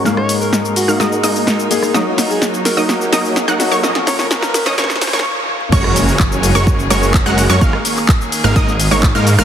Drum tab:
CC |--------------------------------|--------------------------------|--------------------------------|x-------------------------------|
HH |----o-------o-------o-------o---|----o-------o-------o-------o---|----o-------o-------o-----------|----o-------o-------o-------o---|
SH |x---x-x-x-x-x-x-x-x-x-x-x-x-x-x-|x---x-x-x-x-x-x-x-x-x-x-x-x-x-x-|x---x-x-x-x-x-x-x-x-x-x---------|x---x-x-x-x-x-x-x-x-x-x-x-x-x-x-|
CP |--------------------------------|--------------------------------|--------------------------------|--------x---------------x-------|
SD |o-r-----o-------o-------o-----r-|o---o---o---o---o---o---o---o---|o-o-o-o-o-o-o-o-oooooooo--------|--r---------------------------r-|
T1 |--------------------------------|--------------------------------|----------------------------o---|--------------------------------|
T2 |--------------------------------|--------------------------------|------------------------------o-|--------------------------------|
BD |--------------------------------|--------------------------------|--------------------------------|o-------o-------o-------o-------|

CC |--------------------------------|
HH |----o-------o-------o-------o---|
SH |x---x-x-x-x-x-x-x-x-x-x-x-x-x-x-|
CP |------x-x---------------x-------|
SD |--r---------------------------r-|
T1 |--------------------------------|
T2 |--------------------------------|
BD |o-------o-------o-------o-------|